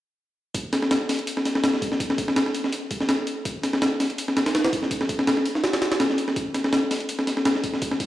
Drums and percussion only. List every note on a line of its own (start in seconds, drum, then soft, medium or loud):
0.55 kick loud
0.55 open hi-hat medium
0.73 snare soft
0.73 open hi-hat medium
0.82 snare soft
0.91 snare loud
0.91 open hi-hat medium
1.09 snare soft
1.09 open hi-hat medium
1.19 closed hi-hat soft
1.27 open hi-hat medium
1.37 snare soft
1.45 snare soft
1.45 open hi-hat medium
1.55 snare soft
1.64 snare loud
1.64 open hi-hat medium
1.74 snare soft
1.82 kick medium
1.82 open hi-hat medium
1.92 snare soft
2.00 kick loud
2.00 open hi-hat medium
2.10 snare soft
2.18 kick medium
2.18 open hi-hat medium
2.28 snare soft
2.36 snare loud
2.36 open hi-hat medium
2.46 snare soft
2.55 open hi-hat medium
2.64 snare soft
2.73 open hi-hat medium
2.91 kick medium
2.91 open hi-hat medium
3.00 snare soft
3.09 snare loud
3.09 open hi-hat medium
3.27 open hi-hat medium
3.45 kick loud
3.45 open hi-hat medium
3.63 snare soft
3.63 open hi-hat medium
3.73 snare medium
3.82 snare loud
3.82 open hi-hat medium
4.00 snare soft
4.00 open hi-hat medium
4.10 closed hi-hat soft
4.18 open hi-hat medium
4.28 snare soft
4.37 snare medium
4.37 open hi-hat medium
4.46 snare medium
4.46 open hi-hat medium
4.55 snare loud
4.55 open hi-hat medium
4.64 snare loud
4.64 open hi-hat medium
4.73 kick medium
4.73 open hi-hat medium
4.83 snare soft
4.91 kick loud
4.91 open hi-hat medium
5.01 snare soft
5.09 kick medium
5.09 open hi-hat medium
5.19 snare medium
5.27 snare loud
5.27 open hi-hat medium
5.37 snare soft
5.46 open hi-hat medium
5.55 snare soft
5.64 snare medium
5.64 open hi-hat medium
5.73 snare loud
5.73 open hi-hat medium
5.82 snare medium
5.82 open hi-hat medium
5.92 snare loud
5.92 open hi-hat medium
6.00 snare loud
6.00 open hi-hat medium
6.10 snare soft
6.18 open hi-hat medium
6.28 snare soft
6.36 kick loud
6.36 open hi-hat medium
6.54 snare soft
6.54 open hi-hat medium
6.64 snare medium
6.73 snare loud
6.73 open hi-hat medium
6.91 snare soft
6.91 open hi-hat medium
7.00 closed hi-hat soft
7.09 open hi-hat medium
7.19 snare soft
7.27 snare soft
7.27 open hi-hat medium
7.37 snare soft
7.45 snare loud
7.45 open hi-hat medium
7.55 snare soft
7.64 kick medium
7.64 open hi-hat medium
7.74 snare soft
7.82 kick loud
7.82 open hi-hat medium
7.91 snare soft
8.00 kick medium
8.00 open hi-hat medium